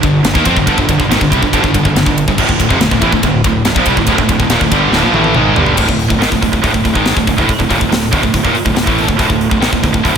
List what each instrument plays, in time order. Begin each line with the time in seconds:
0.02 fingered electric bass G1, distorted electric guitar G2 D3, kick, ride
0.24 fingered electric bass G1, distorted electric guitar G2 D3, snare, ride
0.35 fingered electric bass D#2, distorted electric guitar D#3 A#3, kick
0.45 fingered electric bass F2, distorted electric guitar F3 C4, kick, ride
0.56 fingered electric bass G1, distorted electric guitar G2 D3, kick
0.67 fingered electric bass G1, distorted electric guitar G2 D3, kick, ride
0.78 fingered electric bass G1, distorted electric guitar G2 D3, kick
0.89 fingered electric bass G1, distorted electric guitar G2 D3, kick, ride
1.00 fingered electric bass G1, distorted electric guitar G2 D3, kick
1.10 fingered electric bass G#1, distorted electric guitar G#2 D#3, snare, ride
1.21 fingered electric bass G1, distorted electric guitar G2 D3, kick
1.31 fingered electric bass C2, distorted electric guitar C3 G3, kick, ride
1.42 fingered electric bass G1, distorted electric guitar G2 D3, kick
1.53 fingered electric bass G1, distorted electric guitar G2 D3, kick, ride
1.63 fingered electric bass G1, distorted electric guitar G2 D3, kick
1.73 fingered electric bass G1, distorted electric guitar G2 D3, kick, ride
1.83 fingered electric bass G1, distorted electric guitar G2 D3, kick
1.95 fingered electric bass G1, distorted electric guitar G2 D3, snare, ride
2.05 fingered electric bass G1, distorted electric guitar G2 D3, kick
2.18 ride
2.28 fingered electric bass G1, distorted electric guitar G2 D3, kick
2.37 fingered electric bass D1, distorted electric guitar D2 A2, kick, crash
2.48 fingered electric bass D1, distorted electric guitar D2 A2, kick
2.58 fingered electric bass D1, distorted electric guitar D2 A2, kick, ride
2.69 fingered electric bass F1, distorted electric guitar F2 C3, kick
2.79 fingered electric bass D1, distorted electric guitar D2 A2, snare, ride
2.89 fingered electric bass D1, distorted electric guitar D2 A2, kick
3.01 fingered electric bass A1, distorted electric guitar A2 E3, kick, ride
3.12 fingered electric bass D1, distorted electric guitar D2 A2, kick
3.22 fingered electric bass D1, distorted electric guitar D2 A2, kick, ride
3.44 fingered electric bass D1, distorted electric guitar D2 A2, kick, ride
3.65 fingered electric bass D1, distorted electric guitar D2 A2, snare, ride
3.75 fingered electric bass A#1, distorted electric guitar A#2 F3, kick
3.86 fingered electric bass C2, distorted electric guitar C3 G3, kick, ride
3.97 fingered electric bass D1, distorted electric guitar D2 A2, kick
4.07 fingered electric bass D1, distorted electric guitar D2 A2, kick, ride
4.17 fingered electric bass D1, distorted electric guitar D2 A2, kick
4.21 distorted electric guitar D2 A2
4.28 fingered electric bass D1, distorted electric guitar D2 A2, kick, ride
4.39 fingered electric bass D1, distorted electric guitar D2 A2, kick
4.49 fingered electric bass D#1, distorted electric guitar D#2 A#2, snare, ride
4.61 fingered electric bass D1, distorted electric guitar D2 A2, kick
4.71 fingered electric bass G1, distorted electric guitar G2 D3 G3, kick, ride
4.91 fingered electric bass D1, distorted electric guitar D2 A2, snare
5.03 fingered electric bass A#1, distorted electric guitar A#2 F3
5.12 fingered electric bass A1, distorted electric guitar A2 E3 A3, high tom
5.24 high tom
5.35 fingered electric bass G#1, distorted electric guitar G#2 D#3 G#3, mid tom
5.56 fingered electric bass G1, distorted electric guitar G2 D3 G3, floor tom
5.66 floor tom
5.77 fingered electric bass D1, distorted electric guitar D2 A2, kick, crash
5.89 fingered electric bass D1, distorted electric guitar D2 A2, kick
5.99 open hi-hat
6.09 fingered electric bass D1, distorted electric guitar D2 A2, kick
6.20 fingered electric bass G#1, distorted electric guitar G#2 D#3, snare, open hi-hat
6.31 fingered electric bass D1, distorted electric guitar D2 A2, kick
6.41 fingered electric bass D1, distorted electric guitar D2 A2, kick, open hi-hat
6.53 fingered electric bass D1, distorted electric guitar D2 A2, kick
6.62 fingered electric bass D1, distorted electric guitar D2 A2, kick, open hi-hat
6.74 fingered electric bass D1, distorted electric guitar D2 A2, kick
6.85 fingered electric bass D1, distorted electric guitar D2 A2, kick, open hi-hat
6.95 fingered electric bass G#1, distorted electric guitar G#2 D#3 G#3, kick
7.06 snare, open hi-hat
7.16 fingered electric bass D1, distorted electric guitar D2 A2, kick
7.27 fingered electric bass D1, distorted electric guitar D2 A2, kick, open hi-hat
7.37 fingered electric bass D1, distorted electric guitar D2 A2, kick
7.48 muted distorted electric guitar stroke, muted fingered electric bass stroke, kick, open hi-hat
7.58 fingered electric bass D1, distorted electric guitar D2 A2, kick
7.69 fingered electric bass D#1, distorted electric guitar D#2 A#2, kick, open hi-hat
7.80 fingered electric bass D1, distorted electric guitar D2 A2, kick
7.89 fingered electric bass D1, distorted electric guitar D2 A2, snare, open hi-hat
8.12 fingered electric bass D1, distorted electric guitar D2 A2, kick, open hi-hat
8.23 fingered electric bass D1, distorted electric guitar D2 A2, kick
8.33 fingered electric bass D1, distorted electric guitar D2 A2, kick, open hi-hat
8.44 fingered electric bass D#1, distorted electric guitar D#2 A#2, kick
8.52 muted fingered electric bass stroke, muted distorted electric guitar stroke, open hi-hat
8.65 fingered electric bass D1, distorted electric guitar D2 A2, kick
8.75 fingered electric bass D1, distorted electric guitar D2 A2, snare, open hi-hat
8.87 fingered electric bass A1, distorted electric guitar A2 E3 A3, kick
8.98 open hi-hat
9.08 fingered electric bass D1, distorted electric guitar D2 A2, kick
9.19 fingered electric bass D1, distorted electric guitar D2 A2, kick, open hi-hat
9.30 fingered electric bass D1, distorted electric guitar D2 A2, kick
9.41 open hi-hat
9.51 fingered electric bass D1, distorted electric guitar D2 A2, kick
9.60 fingered electric bass G#1, distorted electric guitar G#2 D#3, snare, open hi-hat
9.71 fingered electric bass D1, distorted electric guitar D2 A2, kick
9.83 fingered electric bass D1, distorted electric guitar D2 A2, kick, open hi-hat
9.93 fingered electric bass D1, distorted electric guitar D2 A2, kick
10.03 fingered electric bass D1, distorted electric guitar D2 A2, kick, open hi-hat
10.14 distorted electric guitar D2 A2